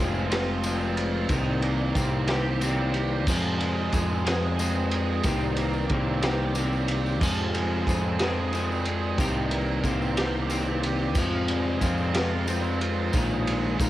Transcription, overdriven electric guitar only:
0, 0, Header, 1, 2, 480
1, 0, Start_track
1, 0, Tempo, 657895
1, 943, Time_signature, 6, 3, 24, 8
1, 10139, End_track
2, 0, Start_track
2, 0, Title_t, "Overdriven electric guitar"
2, 0, Program_c, 0, 29
2, 0, Note_on_c, 0, 53, 77
2, 0, Note_on_c, 0, 56, 62
2, 0, Note_on_c, 0, 60, 75
2, 217, Note_on_c, 0, 65, 76
2, 465, Note_off_c, 0, 60, 0
2, 468, Note_on_c, 0, 60, 60
2, 689, Note_off_c, 0, 65, 0
2, 697, Note_on_c, 0, 65, 74
2, 711, Note_off_c, 0, 53, 0
2, 940, Note_off_c, 0, 65, 0
2, 948, Note_off_c, 0, 56, 0
2, 949, Note_on_c, 0, 51, 66
2, 1186, Note_on_c, 0, 58, 65
2, 1208, Note_off_c, 0, 60, 0
2, 1416, Note_on_c, 0, 60, 69
2, 1664, Note_on_c, 0, 67, 84
2, 1903, Note_off_c, 0, 60, 0
2, 1906, Note_on_c, 0, 60, 70
2, 2133, Note_off_c, 0, 67, 0
2, 2142, Note_on_c, 0, 67, 69
2, 2146, Note_off_c, 0, 51, 0
2, 2382, Note_off_c, 0, 67, 0
2, 2383, Note_on_c, 0, 53, 70
2, 2384, Note_off_c, 0, 58, 0
2, 2622, Note_on_c, 0, 56, 68
2, 2860, Note_off_c, 0, 60, 0
2, 2863, Note_on_c, 0, 60, 61
2, 3100, Note_on_c, 0, 68, 79
2, 3345, Note_off_c, 0, 60, 0
2, 3348, Note_on_c, 0, 60, 75
2, 3572, Note_off_c, 0, 68, 0
2, 3581, Note_on_c, 0, 68, 76
2, 3582, Note_off_c, 0, 53, 0
2, 3821, Note_off_c, 0, 68, 0
2, 3822, Note_off_c, 0, 56, 0
2, 3822, Note_on_c, 0, 51, 69
2, 4064, Note_on_c, 0, 58, 67
2, 4086, Note_off_c, 0, 60, 0
2, 4313, Note_on_c, 0, 60, 72
2, 4544, Note_on_c, 0, 67, 76
2, 4783, Note_off_c, 0, 60, 0
2, 4786, Note_on_c, 0, 60, 68
2, 5020, Note_off_c, 0, 67, 0
2, 5022, Note_off_c, 0, 51, 0
2, 5029, Note_on_c, 0, 67, 77
2, 5263, Note_off_c, 0, 58, 0
2, 5265, Note_off_c, 0, 67, 0
2, 5276, Note_on_c, 0, 53, 68
2, 5521, Note_on_c, 0, 56, 60
2, 5752, Note_off_c, 0, 60, 0
2, 5755, Note_on_c, 0, 60, 66
2, 6000, Note_on_c, 0, 68, 78
2, 6224, Note_off_c, 0, 60, 0
2, 6227, Note_on_c, 0, 60, 71
2, 6455, Note_off_c, 0, 68, 0
2, 6464, Note_on_c, 0, 68, 67
2, 6469, Note_off_c, 0, 53, 0
2, 6702, Note_on_c, 0, 51, 73
2, 6703, Note_off_c, 0, 68, 0
2, 6711, Note_off_c, 0, 56, 0
2, 6943, Note_on_c, 0, 58, 58
2, 6965, Note_off_c, 0, 60, 0
2, 7185, Note_on_c, 0, 60, 70
2, 7427, Note_on_c, 0, 67, 74
2, 7653, Note_off_c, 0, 60, 0
2, 7662, Note_on_c, 0, 60, 63
2, 7900, Note_off_c, 0, 67, 0
2, 7902, Note_off_c, 0, 51, 0
2, 7909, Note_on_c, 0, 67, 73
2, 8142, Note_off_c, 0, 60, 0
2, 8143, Note_off_c, 0, 58, 0
2, 8145, Note_off_c, 0, 67, 0
2, 8147, Note_on_c, 0, 53, 79
2, 8385, Note_on_c, 0, 56, 61
2, 8629, Note_on_c, 0, 60, 64
2, 8866, Note_on_c, 0, 65, 80
2, 9096, Note_off_c, 0, 60, 0
2, 9105, Note_on_c, 0, 60, 75
2, 9350, Note_off_c, 0, 65, 0
2, 9353, Note_on_c, 0, 65, 75
2, 9584, Note_off_c, 0, 60, 0
2, 9587, Note_off_c, 0, 53, 0
2, 9590, Note_on_c, 0, 51, 67
2, 9612, Note_off_c, 0, 65, 0
2, 9829, Note_off_c, 0, 56, 0
2, 9832, Note_on_c, 0, 56, 64
2, 10057, Note_on_c, 0, 63, 64
2, 10139, Note_off_c, 0, 51, 0
2, 10139, Note_off_c, 0, 56, 0
2, 10139, Note_off_c, 0, 63, 0
2, 10139, End_track
0, 0, End_of_file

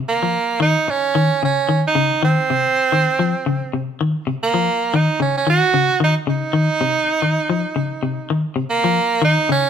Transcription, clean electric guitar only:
0, 0, Header, 1, 3, 480
1, 0, Start_track
1, 0, Tempo, 538213
1, 75, Time_signature, 4, 2, 24, 8
1, 8648, End_track
2, 0, Start_track
2, 0, Title_t, "Clean electric guitar"
2, 0, Program_c, 0, 27
2, 202, Note_on_c, 0, 53, 55
2, 336, Note_off_c, 0, 53, 0
2, 535, Note_on_c, 0, 51, 84
2, 674, Note_off_c, 0, 51, 0
2, 1027, Note_on_c, 0, 51, 90
2, 1162, Note_off_c, 0, 51, 0
2, 1273, Note_on_c, 0, 49, 65
2, 1407, Note_off_c, 0, 49, 0
2, 1503, Note_on_c, 0, 51, 77
2, 1640, Note_off_c, 0, 51, 0
2, 1741, Note_on_c, 0, 49, 73
2, 1878, Note_off_c, 0, 49, 0
2, 1985, Note_on_c, 0, 51, 89
2, 2121, Note_off_c, 0, 51, 0
2, 2231, Note_on_c, 0, 48, 66
2, 2365, Note_off_c, 0, 48, 0
2, 2607, Note_on_c, 0, 51, 73
2, 2740, Note_off_c, 0, 51, 0
2, 2847, Note_on_c, 0, 53, 63
2, 2980, Note_off_c, 0, 53, 0
2, 3088, Note_on_c, 0, 49, 72
2, 3221, Note_off_c, 0, 49, 0
2, 3330, Note_on_c, 0, 48, 66
2, 3463, Note_off_c, 0, 48, 0
2, 3573, Note_on_c, 0, 51, 78
2, 3705, Note_off_c, 0, 51, 0
2, 3807, Note_on_c, 0, 48, 68
2, 3867, Note_off_c, 0, 48, 0
2, 4048, Note_on_c, 0, 53, 57
2, 4181, Note_off_c, 0, 53, 0
2, 4402, Note_on_c, 0, 51, 85
2, 4533, Note_off_c, 0, 51, 0
2, 4637, Note_on_c, 0, 49, 71
2, 4770, Note_off_c, 0, 49, 0
2, 4876, Note_on_c, 0, 51, 81
2, 5009, Note_off_c, 0, 51, 0
2, 5118, Note_on_c, 0, 49, 69
2, 5250, Note_off_c, 0, 49, 0
2, 5353, Note_on_c, 0, 51, 82
2, 5487, Note_off_c, 0, 51, 0
2, 5593, Note_on_c, 0, 49, 77
2, 5727, Note_off_c, 0, 49, 0
2, 5826, Note_on_c, 0, 51, 90
2, 5962, Note_off_c, 0, 51, 0
2, 6072, Note_on_c, 0, 48, 70
2, 6206, Note_off_c, 0, 48, 0
2, 6441, Note_on_c, 0, 51, 66
2, 6576, Note_off_c, 0, 51, 0
2, 6685, Note_on_c, 0, 53, 68
2, 6818, Note_off_c, 0, 53, 0
2, 6919, Note_on_c, 0, 49, 67
2, 7054, Note_off_c, 0, 49, 0
2, 7158, Note_on_c, 0, 48, 65
2, 7294, Note_off_c, 0, 48, 0
2, 7404, Note_on_c, 0, 51, 79
2, 7538, Note_off_c, 0, 51, 0
2, 7632, Note_on_c, 0, 48, 70
2, 7696, Note_off_c, 0, 48, 0
2, 7884, Note_on_c, 0, 53, 66
2, 8019, Note_off_c, 0, 53, 0
2, 8219, Note_on_c, 0, 51, 87
2, 8357, Note_off_c, 0, 51, 0
2, 8466, Note_on_c, 0, 49, 67
2, 8602, Note_off_c, 0, 49, 0
2, 8648, End_track
3, 0, Start_track
3, 0, Title_t, "Muted clean electric guitar strokes"
3, 786, Note_on_c, 9, 29, 65
3, 875, Note_off_c, 9, 29, 0
3, 8648, End_track
0, 0, End_of_file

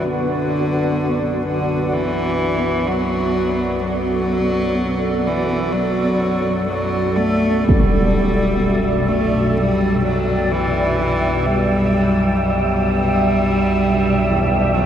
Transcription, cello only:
0, 0, Header, 1, 2, 480
1, 0, Start_track
1, 0, Key_signature, 2, "minor"
1, 0, Tempo, 946372
1, 39, Time_signature, 4, 2, 24, 8
1, 2919, Tempo, 961538
1, 4839, Tempo, 940439
1, 7523, End_track
2, 0, Start_track
2, 0, Title_t, "Cello"
2, 0, Program_c, 0, 42
2, 3, Note_on_c, 0, 52, 57
2, 22, Note_on_c, 0, 50, 77
2, 30, Note_off_c, 0, 52, 0
2, 739, Note_off_c, 0, 50, 0
2, 742, Note_on_c, 0, 50, 77
2, 977, Note_on_c, 0, 52, 86
2, 985, Note_off_c, 0, 50, 0
2, 1459, Note_on_c, 0, 54, 84
2, 1467, Note_off_c, 0, 52, 0
2, 1940, Note_off_c, 0, 54, 0
2, 1943, Note_on_c, 0, 54, 87
2, 2675, Note_on_c, 0, 52, 81
2, 2683, Note_off_c, 0, 54, 0
2, 2905, Note_on_c, 0, 54, 84
2, 2913, Note_off_c, 0, 52, 0
2, 3381, Note_off_c, 0, 54, 0
2, 3384, Note_on_c, 0, 54, 80
2, 3627, Note_on_c, 0, 57, 89
2, 3635, Note_off_c, 0, 54, 0
2, 3859, Note_on_c, 0, 55, 88
2, 3867, Note_off_c, 0, 57, 0
2, 4579, Note_on_c, 0, 57, 86
2, 4586, Note_off_c, 0, 55, 0
2, 4825, Note_on_c, 0, 55, 91
2, 4833, Note_off_c, 0, 57, 0
2, 5065, Note_off_c, 0, 55, 0
2, 5068, Note_on_c, 0, 54, 80
2, 5306, Note_on_c, 0, 52, 83
2, 5313, Note_off_c, 0, 54, 0
2, 5791, Note_on_c, 0, 55, 89
2, 5798, Note_off_c, 0, 52, 0
2, 6267, Note_off_c, 0, 55, 0
2, 6270, Note_on_c, 0, 55, 93
2, 7464, Note_on_c, 0, 54, 75
2, 7472, Note_off_c, 0, 55, 0
2, 7523, Note_off_c, 0, 54, 0
2, 7523, End_track
0, 0, End_of_file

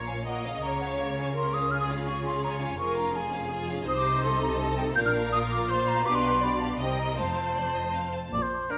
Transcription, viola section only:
0, 0, Header, 1, 2, 480
1, 0, Start_track
1, 0, Tempo, 363196
1, 827, Time_signature, 3, 2, 24, 8
1, 8497, Tempo, 378788
1, 11475, End_track
2, 0, Start_track
2, 0, Title_t, "Viola section"
2, 0, Program_c, 0, 48
2, 0, Note_on_c, 0, 73, 43
2, 310, Note_off_c, 0, 73, 0
2, 353, Note_on_c, 0, 75, 44
2, 824, Note_off_c, 0, 75, 0
2, 838, Note_on_c, 0, 73, 51
2, 1792, Note_on_c, 0, 70, 39
2, 1795, Note_off_c, 0, 73, 0
2, 2257, Note_off_c, 0, 70, 0
2, 2274, Note_on_c, 0, 68, 51
2, 2735, Note_off_c, 0, 68, 0
2, 2759, Note_on_c, 0, 68, 42
2, 3217, Note_off_c, 0, 68, 0
2, 3227, Note_on_c, 0, 73, 47
2, 3698, Note_off_c, 0, 73, 0
2, 3701, Note_on_c, 0, 70, 54
2, 4163, Note_off_c, 0, 70, 0
2, 4183, Note_on_c, 0, 68, 47
2, 5113, Note_on_c, 0, 72, 62
2, 5126, Note_off_c, 0, 68, 0
2, 5597, Note_off_c, 0, 72, 0
2, 5607, Note_on_c, 0, 69, 54
2, 6067, Note_off_c, 0, 69, 0
2, 6083, Note_on_c, 0, 69, 54
2, 6551, Note_off_c, 0, 69, 0
2, 6560, Note_on_c, 0, 70, 67
2, 7508, Note_off_c, 0, 70, 0
2, 7520, Note_on_c, 0, 72, 58
2, 7997, Note_on_c, 0, 71, 65
2, 8007, Note_off_c, 0, 72, 0
2, 8480, Note_off_c, 0, 71, 0
2, 8491, Note_on_c, 0, 74, 56
2, 8959, Note_on_c, 0, 75, 51
2, 8966, Note_off_c, 0, 74, 0
2, 9440, Note_off_c, 0, 75, 0
2, 9455, Note_on_c, 0, 72, 48
2, 10673, Note_off_c, 0, 72, 0
2, 11381, Note_on_c, 0, 70, 45
2, 11384, Note_on_c, 0, 62, 48
2, 11475, Note_off_c, 0, 62, 0
2, 11475, Note_off_c, 0, 70, 0
2, 11475, End_track
0, 0, End_of_file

